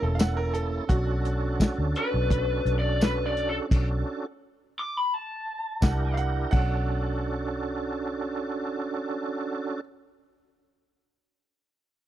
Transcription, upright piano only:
0.03 A4
0.15 F5
0.19 F#5
0.37 A#4
0.54 A4
0.89 F#4
5.82 F#5
6.14 F5 F#5
6.51 F#5

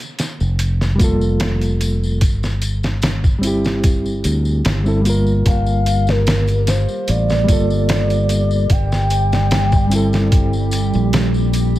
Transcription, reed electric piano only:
0.95 G3 A#3
1.01 F4 A4
3.39 G3 C4
3.44 E4 G4
4.84 G3 C4 E4
4.88 A4
5.01 G3 A#3
5.07 F4 A#4
7.44 G3 A#3
7.50 F4 A4
9.87 G3 C4
9.93 E4 A4

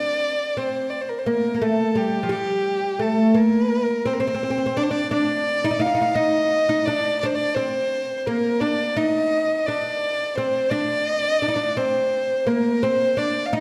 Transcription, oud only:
Already playing: D4
0.57 C4
1.26 A#3
1.54 A#3
1.62 A3
1.95 G3
2.23 F3
2.29 G3
2.99 A3
3.34 A#3
4.05 C4
4.20 C4
4.27 C4
4.34 C4
4.43 C4
4.50 C4
4.58 C4
4.66 C4
4.77 D4
4.91 D4
5.11 D4
5.64 D#4
5.71 D#4
5.79 D#4
5.86 D#4
5.95 D#4
6.01 D#4
6.15 D#4
6.69 D#4
6.87 D4
7.23 D4
7.56 C4
8.27 A#3
8.61 D4
8.97 D#4
9.68 D4
10.37 C4
10.71 D4
11.42 D4
11.48 D#4
11.56 D4
11.77 C4
12.47 A#3
12.83 C4
13.17 D4
13.53 D#4

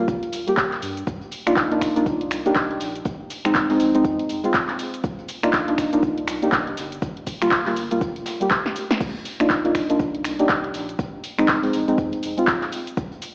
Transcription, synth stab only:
Already playing: G3 A#3
0.00 F4
0.47 G3 A#3 G4
1.46 A#3 D4 D#4 F4
1.71 A#3 D4 D#4 F4
1.96 A#3 D4 D#4 F4
2.45 A#3 D4 D#4 G4
3.45 G#3 C4 D#4
3.69 G#3 C4 D#4
3.94 G#3 C4 D#4
4.43 G#3 C4 F4
5.43 A#3 D4 D#4 F4
5.68 A#3 D4 D#4 F4
5.93 A#3 D4 D#4 F4
6.42 A#3 D4 D#4 G4
7.41 G3 A#3 F4
7.66 G3 A#3 F4
7.91 G3 A#3 F4
8.40 G3 A#3 G4
9.40 A#3 D4 D#4 F4
9.64 A#3 D4 D#4 F4
9.89 A#3 D4 D#4 F4
10.39 A#3 D4 D#4 G4
11.38 G#3 C4 D#4
11.63 G#3 C4 D#4
11.88 G#3 C4 D#4
12.37 G#3 C4 F4

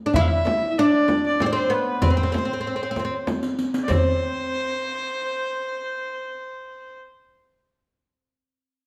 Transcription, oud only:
0.06 D4
0.16 E4
0.79 D4
1.42 C4
1.46 D4
1.53 C4
1.70 B3
2.02 C4
2.10 C4
2.17 C4
2.23 C4
2.32 C4
2.38 C4
2.45 C4
2.53 C4
2.61 C4
2.67 C4
2.76 C4
2.83 C4
2.91 C4
2.99 C4
3.05 C4
3.88 C4

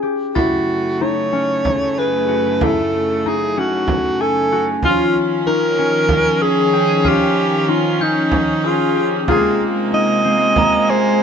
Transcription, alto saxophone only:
0.36 F#4
1.02 C#5
1.99 B4
2.64 A4
3.28 G#4
3.59 F#4
4.22 A4
4.85 F4
5.47 A#4
6.42 G#4
7.08 G4
7.70 F4
8.03 D#4
8.66 F4
9.30 G#4
9.94 D#5
10.90 C5

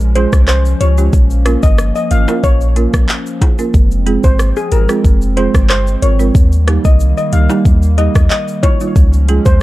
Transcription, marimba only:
0.16 G#3 C#4 F4 G#4
0.81 F4 G4
0.98 G#3 C#4 F4 G4
1.46 A#3 C#4 F4 A#4
2.11 F4 A#4
2.28 A#3 C#4 F4 A#4
2.76 A#3 C#4 F4 A#4
3.41 F4 G#4
3.59 A#3 C#4 F4 A#4
4.06 G#3 C4 F4 G#4
4.72 F4 G4
4.89 G#3 C4 F4 G#4
5.37 G#3 C4 F4 G#4
6.02 F4 A#4
6.19 G#3 C4 F4 A#4
6.67 G3 A#3 D#4 G4
7.33 D#4 G4
7.50 G3 A#3 D#4 G4
7.98 G3 A#3 D#4 G4
8.63 D#4 F4
8.81 G3 A#3 D#4 F4
9.29 G#3 C#4 F4 G#4

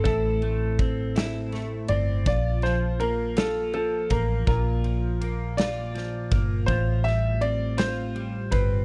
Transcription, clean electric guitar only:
Already playing: A3 C4
0.06 A2 E4
0.43 A3
0.80 C4
1.16 E4
1.53 A3
1.90 C4
2.28 F4
2.64 F3
3.01 A#3
3.37 F4
3.74 F3
4.10 A#3
4.47 A#2 F4
4.84 F3
5.21 A#3
5.59 F4
5.95 F3
6.31 A#3
6.69 A2 F4
7.05 G3
7.41 C4
7.77 F4
8.15 G3
8.51 C4

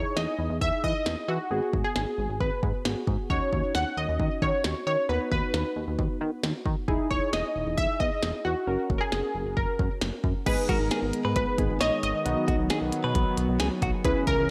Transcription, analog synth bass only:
0.16 E2
0.39 E2
0.50 E2
0.61 E2
0.84 E3
1.06 E2
1.28 E3
1.51 G#1
1.73 G#1
1.96 G#1
2.18 G#1
2.29 G#1
2.41 G#1
2.63 G#2
2.85 G#1
3.07 G#2
3.30 D#2
3.53 D#2
3.75 D#2
3.97 D#2
4.09 D#2
4.20 D#2
4.42 D#3
4.64 D#2
4.87 D#3
5.09 D#2
5.32 D#2
5.54 D#2
5.76 D#2
5.87 D#2
5.99 D#2
6.21 D#3
6.43 D#2
6.66 D#3
6.88 E1
7.11 E1
7.33 E1
7.55 E1
7.67 E1
7.78 E1
8.00 E2
8.22 E1
8.45 E2
8.67 F#1
8.90 F#1
9.12 F#1
9.35 F#1
9.46 F#1
9.57 F#1
9.79 F#2
10.02 F#1
10.24 F#2
10.46 G#1
10.69 G#1
10.80 G#1
11.02 G#1
11.25 G#2
11.36 G#1
11.58 G#1
11.70 G#1
11.81 A#1
12.03 G#1
12.26 B1
12.48 B1
12.59 B1
12.82 B1
13.04 B2
13.15 B1
13.38 B1
13.49 B1
13.60 C#2
13.82 B1
14.05 C#2
14.27 C#2
14.38 C#2

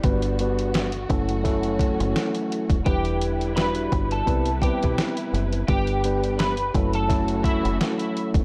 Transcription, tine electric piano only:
0.04 G3 B3 D4 F#4 B4
0.39 G3 B3 D4 F#4 B4
1.09 F#3 A3 C#4 E4 A4
1.43 F#3 A3 C#4 E4 A4
2.84 G3 D4 E4 G4 B4
3.56 G3 D4 E4 F#4 B4
4.26 G3 B3 C4 E4 B4
4.62 G3 B3 C4 E4 B4
5.68 G3 B3 D4 G4 B4
6.04 G3 B3 D4 G4 B4
6.74 F#3 A3 C#4 E4 A4
7.08 F#3 A3 C#4 E4 A4

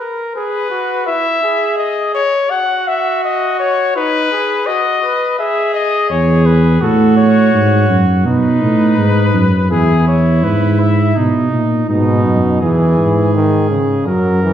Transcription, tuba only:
6.11 E2
6.81 A2
7.54 G#2
7.89 F#2
8.25 B2
8.62 A2
8.98 G#2
9.34 F#2
9.71 E2
10.44 G#2
11.17 B2
11.53 A#2
11.89 G#2
12.25 F#2
12.62 E2
12.98 G#2
14.07 F#2

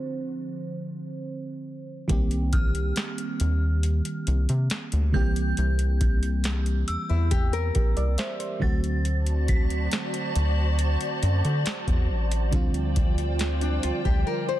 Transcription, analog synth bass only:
2.10 C2
3.41 D#2
4.28 C2
4.49 C3
4.93 D2
5.14 C2
5.58 C2
6.89 E2
7.10 E2
7.76 C2
7.97 C2
8.62 D2
10.36 D2
11.23 F#2
11.45 D3
11.88 E2
12.10 A1
12.53 D2
13.84 D2
14.06 D2

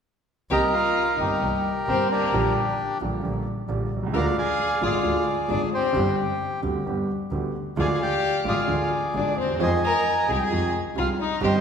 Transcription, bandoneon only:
0.52 A#4 D#5 G5
0.74 A#4 F5
1.18 G4 A#4 D#5
1.88 C5
2.11 D4 G4 A#4
4.16 D5 F5 A#5
4.38 D5 F5 G#5
4.84 G#4 D5 F5
5.52 D5
5.74 G4 C5
7.80 D5 F5 G#5
7.95 G#5
8.02 D5 G5
8.48 G#4 D5 F5
9.17 D5
9.40 C5
9.63 D#5 G#5 C6
9.84 D#5 A#5
10.32 G#5
10.39 G5
10.46 G#5
11.00 F5
11.22 D#5
11.44 C5 D#5 G5

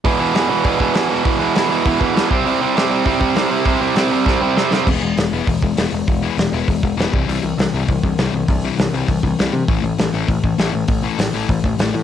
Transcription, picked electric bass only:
4.87 E1
5.03 E1
5.17 E1
5.32 E1
5.47 E1
5.62 E1
5.77 E1
5.92 E1
6.08 E1
6.38 E1
6.52 E1
6.68 E1
6.83 E1
6.98 E1
7.13 C2
7.28 C2
7.43 C2
7.58 C2
7.73 C2
7.89 C2
8.03 C2
8.19 C2
8.33 C2
8.48 C2
8.79 C2
8.93 C2
9.08 C2
9.23 C2
9.39 C2
9.53 C3
9.68 A1
9.82 A1
9.99 A1
10.14 A1
10.28 A1
10.44 A1
10.59 A1
10.74 A1
10.88 A1
11.19 A1
11.34 A1
11.49 A1
11.64 A1
11.79 A1
11.94 A2

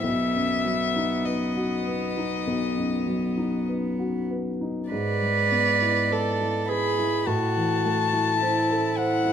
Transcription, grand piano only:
0.03 B1
0.34 F#2
0.65 F#3
0.96 D#4
1.26 B4
1.57 F#4
1.87 B4
2.17 D#4
2.47 B1
2.76 F#2
3.07 F#3
3.37 D#4
3.69 B4
3.99 F#4
4.31 B4
4.61 D#4
4.92 G#2
5.22 G#3
5.51 B3
5.82 E4
6.11 B4
6.40 E4
6.68 B4
6.99 E4
7.27 A2
7.56 E3
7.85 A3
8.13 E4
8.42 C5
8.70 A4
8.98 C5
9.25 E4

